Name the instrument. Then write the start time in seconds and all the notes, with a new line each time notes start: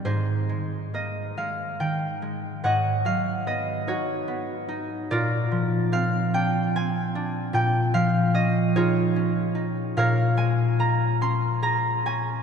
harp
Already playing: C4
0.05 G#2 D#4 G#4 C5
0.49 G#3
0.94 A#3 D#5
1.37 G#3 F5
1.80 D#3 G5
2.22 G#3
2.64 G#2 C#5 D#5 F#5
3.05 F#3 F5
3.47 B3 D#5
3.87 D#4 F#4 C#5
4.28 B3
4.68 D#4
5.11 A#2 F4 A#4 D5
5.51 F3
5.92 C4 F5
6.34 D4 G5
6.76 C4 G#5
7.15 D4
7.53 A#2 G5
7.94 F3 F5
8.34 C#4 D#5
8.76 D#4 F4 G#4 C#5
9.16 C#4
9.55 D#4
9.97 A#2 A#4 C#5 F5
10.37 G#3 G#5
10.79 A#3 A#5
11.21 C#4 C6
11.62 G#4 A#5
12.06 C#4 G#5